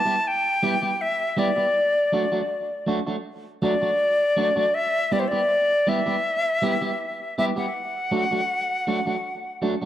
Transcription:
0.00 0.29 A5 loud
0.05 0.15 G3 medium
0.05 0.15 B3 soft
0.05 0.15 E4 medium
0.05 0.14 G4 medium
0.27 1.03 G5 loud
0.63 0.74 G3 medium
0.63 0.74 B3 medium
0.63 0.74 E4 medium
0.63 0.74 G4 medium
0.82 0.91 G3 soft
0.82 0.90 B3 soft
0.82 0.90 E4 medium
0.82 0.90 G4 medium
1.01 1.40 E5 medium
1.37 1.49 G3 medium
1.37 1.49 B3 medium
1.37 1.49 E4 medium
1.37 1.49 G4 medium
1.37 2.88 D5 medium
1.56 1.66 G3 soft
1.56 1.65 B3 soft
1.56 1.65 E4 medium
1.56 1.65 G4 medium
2.12 2.24 F#3 medium
2.12 2.24 A3 medium
2.12 2.24 D4 medium
2.12 2.25 F#4 medium
2.32 2.41 F#3 medium
2.32 2.41 A3 medium
2.32 2.41 D4 medium
2.32 2.40 F#4 medium
2.87 2.99 F#3 medium
2.87 2.99 A3 medium
2.87 2.99 D4 medium
2.87 2.99 F#4 medium
3.07 3.16 F#3 medium
3.07 3.16 A3 medium
3.07 3.15 D4 medium
3.07 3.15 F#4 medium
3.62 3.74 F#3 medium
3.62 3.74 A3 medium
3.62 3.74 D4 medium
3.62 3.75 F#4 loud
3.62 4.76 D5 medium
3.81 3.91 F#3 soft
3.81 3.91 A3 soft
3.81 3.90 D4 medium
3.81 3.90 F#4 medium
4.37 4.49 F#3 medium
4.37 4.49 A3 medium
4.37 4.49 D4 medium
4.37 4.49 F#4 medium
4.56 4.66 F#3 medium
4.56 4.65 A3 medium
4.56 4.65 D4 medium
4.56 4.65 F#4 medium
4.74 5.14 E5 loud
5.12 5.24 G3 medium
5.12 5.24 B3 medium
5.12 5.24 E4 medium
5.12 5.24 G4 medium
5.12 5.21 D5 medium
5.19 5.29 C5 medium
5.28 5.40 E4 medium
5.28 5.40 G4 medium
5.28 5.90 D5 medium
5.33 5.41 G3 soft
5.33 5.41 B3 medium
5.87 5.99 G3 medium
5.87 5.99 B3 medium
5.87 5.99 E4 medium
5.87 6.00 G4 medium
5.87 7.38 E5 loud
6.06 6.16 G3 medium
6.06 6.16 B3 medium
6.06 6.15 E4 medium
6.06 6.15 G4 medium
6.62 6.74 G3 medium
6.62 6.75 B3 medium
6.62 6.75 E4 medium
6.62 6.75 G4 medium
6.81 6.91 G3 soft
6.81 6.91 B3 soft
6.81 6.90 E4 medium
6.81 6.90 G4 medium
7.38 7.50 G3 medium
7.38 7.50 B3 medium
7.38 7.50 E4 medium
7.38 7.50 G4 medium
7.38 7.45 E5 medium
7.56 7.66 G3 medium
7.56 7.66 B3 medium
7.56 7.66 E4 medium
7.56 7.65 G4 medium
7.56 9.85 F#5 loud
8.11 8.24 F#3 medium
8.11 8.24 A3 medium
8.11 8.24 D4 medium
8.11 8.24 F#4 medium
8.31 8.41 F#3 medium
8.31 8.41 A3 medium
8.31 8.41 D4 medium
8.31 8.40 F#4 medium
8.87 8.99 F#3 medium
8.87 8.99 A3 medium
8.87 9.00 D4 medium
8.87 9.00 F#4 medium
9.06 9.16 F#3 soft
9.06 9.16 A3 medium
9.06 9.16 D4 medium
9.06 9.15 F#4 medium
9.62 9.74 F#3 medium
9.62 9.74 A3 medium
9.62 9.75 D4 medium
9.62 9.75 F#4 medium
9.82 9.85 A3 medium
9.82 9.85 D4 medium
9.82 9.85 F#4 medium

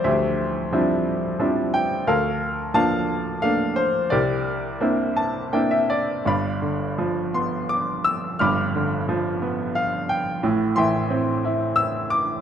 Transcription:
0.00 2.08 E3 soft
0.00 0.73 F3 soft
0.00 0.72 G3 soft
0.00 0.73 C4 soft
0.00 0.73 D4 soft
0.00 0.73 E4 soft
0.00 0.06 C5 medium
0.00 2.09 D5 medium
0.00 0.04 E5 medium
0.00 2.07 F5 medium
0.04 2.03 D2 medium
0.04 1.03 G4 soft
0.04 1.03 C5 soft
0.04 0.69 E5 medium
0.72 1.38 F3 soft
0.72 1.38 G3 soft
0.72 1.38 C4 soft
0.72 1.38 D4 soft
0.72 1.38 E4 soft
1.39 2.04 F3 soft
1.39 2.05 G3 soft
1.39 2.05 C4 soft
1.39 2.05 D4 soft
1.39 2.05 E4 soft
1.74 2.08 G5 medium
2.07 4.09 D2 medium
2.07 3.05 A4 medium
2.07 3.05 A#4 medium
2.07 2.73 F5 medium
2.74 3.41 F3 soft
2.74 3.41 A#3 soft
2.74 3.42 D4 medium
2.74 3.41 F5 medium
2.74 3.46 A5 medium
3.42 4.10 A3 soft
3.42 4.10 A#3 soft
3.42 4.11 D4 medium
3.42 3.79 F5 medium
3.76 4.12 C5 medium
4.10 6.22 C2 medium
4.10 5.49 G4 soft
4.10 5.49 A#4 medium
4.10 5.48 D5 medium
4.81 5.51 A#3 medium
4.81 5.51 C4 soft
4.81 5.51 D4 soft
4.81 5.51 E4 medium
5.16 5.51 A5 medium
5.53 6.24 A#3 soft
5.53 6.24 C4 soft
5.53 6.24 D4 soft
5.53 6.24 E4 medium
5.53 5.70 G5 medium
5.71 5.88 E5 medium
5.90 6.24 D5 medium
6.25 8.36 G1 soft
6.25 8.36 G2 medium
6.25 7.31 D5 soft
6.25 7.31 F5 soft
6.25 7.38 B5 medium
6.62 8.01 D3 soft
6.98 8.36 F3 medium
7.34 8.71 B3 soft
7.34 7.68 C6 medium
7.69 8.06 D6 medium
8.04 8.41 E6 loud
8.39 10.39 G1 medium
8.39 10.39 G2 medium
8.39 9.39 B5 medium
8.39 9.39 D6 medium
8.39 9.04 F6 medium
8.76 10.06 D3 medium
9.09 10.39 F3 medium
9.42 10.40 B3 soft
9.75 10.07 F5 medium
10.09 10.41 G5 medium
10.43 12.41 A1 medium
10.43 12.41 A2 medium
10.76 12.08 E3 medium
10.76 11.75 E5 medium
10.76 11.75 G5 medium
10.76 11.74 C6 medium
11.10 12.41 C4 medium
11.45 12.41 E4 soft
11.76 12.12 E6 loud
12.10 12.41 D6 medium

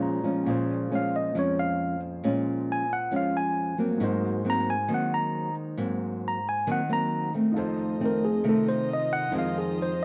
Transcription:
0.00 0.42 A#2 medium
0.00 0.44 A#2 medium
0.00 0.20 F3 medium
0.00 0.20 G#3 medium
0.00 0.21 C#4 medium
0.00 0.44 C#4 soft
0.00 0.45 F4 soft
0.00 0.45 G#4 medium
0.00 0.46 C5 medium
0.00 0.43 A#5 medium
0.24 0.87 F3 medium
0.24 0.87 G#3 medium
0.24 0.87 C#4 medium
0.44 3.96 A#2 medium
0.44 1.33 A#2 medium
0.44 3.96 C#4 soft
0.44 3.97 F4 soft
0.48 3.98 G#4 soft
0.48 3.99 C5 medium
0.91 1.32 F3 medium
0.91 1.32 G#3 soft
0.91 1.32 C#4 medium
0.95 1.15 F5 medium
1.16 1.36 D#5 medium
1.35 2.22 F2 medium
1.35 1.95 F3 soft
1.35 1.95 G#3 soft
1.35 1.95 C#4 soft
1.35 1.59 C#5 medium
1.59 2.00 F5 medium
2.24 3.10 A#2 medium
2.24 2.84 F3 soft
2.24 2.84 G#3 soft
2.24 2.84 C#4 medium
2.72 2.92 G#5 medium
2.93 3.13 F#5 medium
3.11 3.98 F2 medium
3.11 3.75 F3 medium
3.11 3.75 G#3 medium
3.11 3.75 C#4 medium
3.16 3.36 F5 medium
3.37 3.77 G#5 medium
3.78 4.41 F#3 medium
3.78 4.42 A#3 medium
3.78 4.42 C4 medium
3.98 4.87 G#2 medium
3.98 7.50 G#3 medium
3.98 7.50 D#4 medium
3.98 7.51 F#4 soft
4.03 7.52 A#4 medium
4.03 7.53 C5 medium
4.44 4.73 F#3 medium
4.44 4.74 A#3 medium
4.44 4.74 C4 medium
4.50 4.69 A#5 medium
4.70 4.90 G#5 medium
4.88 5.75 D#3 medium
4.88 5.49 F#3 soft
4.88 5.49 A#3 medium
4.88 5.49 C4 medium
4.94 5.14 F#5 medium
5.14 5.54 A#5 medium
5.77 6.64 G#2 medium
5.77 6.38 F#3 medium
5.77 6.38 A#3 soft
5.77 6.38 C4 medium
6.28 6.47 A#5 medium
6.49 6.68 G#5 medium
6.67 7.33 D#3 medium
6.67 6.80 F#3 medium
6.67 6.80 A#3 soft
6.67 6.80 C4 medium
6.72 6.91 F#5 medium
6.89 7.30 F#3 medium
6.89 7.30 A#3 medium
6.89 7.30 C4 medium
6.89 7.32 A#5 medium
7.34 7.97 D#3 medium
7.34 7.97 A3 medium
7.34 7.97 C4 medium
7.52 9.27 D#4 medium
7.52 9.28 F4 soft
7.56 8.42 F2 medium
7.56 9.31 A3 medium
7.56 10.05 F4 medium
7.56 9.29 A4 soft
7.56 9.30 C5 medium
7.56 10.05 D#5 medium
8.00 8.28 D#3 medium
8.00 8.29 A3 medium
8.00 8.29 C4 medium
8.06 8.24 A#4 medium
8.25 8.45 G#4 medium
8.44 9.30 C3 medium
8.44 9.29 D#3 soft
8.44 9.29 A3 medium
8.44 9.30 C4 medium
8.49 8.68 A4 medium
8.69 8.89 C5 medium
8.93 9.12 D#5 medium
9.13 9.33 F#5 loud
9.29 10.05 F2 medium
9.29 9.92 D#3 soft
9.29 10.05 F3 soft
9.29 10.05 F3 medium
9.29 9.92 G#3 soft
9.29 10.05 D#4 soft
9.29 10.05 F4 soft
9.33 9.92 C4 medium
9.33 10.05 G#4 soft
9.33 10.05 C5 medium
9.38 9.57 F5 medium
9.58 9.78 G#4 medium
9.82 10.01 C5 medium

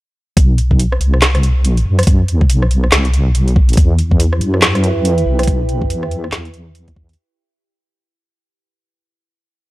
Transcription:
0.37 0.99 B1 loud
0.37 kick loud
0.37 closed hi-hat medium
0.58 closed hi-hat medium
0.71 kick medium
0.80 closed hi-hat medium
0.92 cross-stick medium
1.01 1.60 C2 medium
1.01 closed hi-hat medium
1.14 cross-stick medium
1.22 snare loud
1.22 clap loud
1.22 closed hi-hat medium
1.35 cross-stick medium
1.35 closed hi-hat soft
1.43 closed hi-hat medium
1.60 1.84 B1 medium
1.65 closed hi-hat medium
1.77 closed hi-hat soft
1.86 2.48 F#2 loud
1.99 cross-stick medium
1.99 closed hi-hat medium
2.03 closed hi-hat medium
2.07 kick loud
2.07 closed hi-hat medium
2.28 closed hi-hat medium
2.41 kick medium
2.49 2.91 B1 loud
2.49 closed hi-hat medium
2.62 cross-stick medium
2.71 closed hi-hat medium
2.84 cross-stick medium
2.92 3.33 C2 loud
2.92 snare loud
2.92 clap medium
2.92 closed hi-hat medium
3.05 closed hi-hat soft
3.14 closed hi-hat medium
3.35 3.76 B1 loud
3.35 closed hi-hat medium
3.48 closed hi-hat soft
3.56 kick loud
3.69 closed hi-hat medium
3.73 closed hi-hat medium
3.77 4.40 E2 loud
3.77 7.14 E4 medium
3.77 7.14 G4 medium
3.77 7.14 B4 loud
3.77 kick loud
3.77 closed hi-hat medium
3.99 closed hi-hat medium
4.11 kick medium
4.20 closed hi-hat medium
4.33 cross-stick medium
4.41 5.00 F#2 medium
4.41 closed hi-hat medium
4.54 cross-stick medium
4.62 snare loud
4.62 clap medium
4.62 closed hi-hat medium
4.75 cross-stick medium
4.75 closed hi-hat soft
4.84 closed hi-hat medium
5.00 5.25 F2 medium
5.05 closed hi-hat medium
5.18 closed hi-hat soft
5.26 5.70 B1 loud
5.39 cross-stick medium
5.39 closed hi-hat medium
5.43 closed hi-hat medium
5.47 kick loud
5.47 closed hi-hat medium
5.69 5.89 A#1 loud
5.69 closed hi-hat soft
5.82 kick medium
5.90 6.31 E2 loud
5.90 closed hi-hat medium
6.03 cross-stick medium
6.11 closed hi-hat medium
6.24 cross-stick medium
6.32 7.16 E2 loud
6.32 snare loud
6.32 clap medium
6.32 closed hi-hat medium
6.45 closed hi-hat soft
6.54 closed hi-hat medium
6.75 closed hi-hat medium
6.88 kick medium
6.88 closed hi-hat soft
6.96 kick loud
7.09 closed hi-hat soft
7.13 closed hi-hat medium

